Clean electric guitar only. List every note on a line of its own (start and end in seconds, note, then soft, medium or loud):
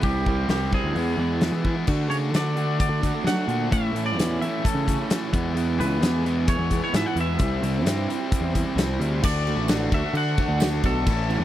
0.04 0.49 G4 medium
0.50 0.71 G4 medium
0.74 1.62 G#4 medium
2.10 2.16 C#5 medium
2.36 2.79 D5 medium
2.80 3.27 D5 medium
3.27 3.69 F#5 medium
3.72 4.04 E5 medium
4.06 4.41 D5 medium
4.41 4.65 E5 medium
4.65 5.30 A4 medium
5.80 6.44 B4 medium
6.49 6.80 C#5 medium
6.84 6.94 C#5 medium
6.96 7.06 E5 loud
7.06 7.17 F#5 medium
7.21 8.75 E5 loud
9.25 9.94 D5 medium
9.94 10.17 E5 medium
10.17 10.87 F#5 loud
10.86 11.44 A4 medium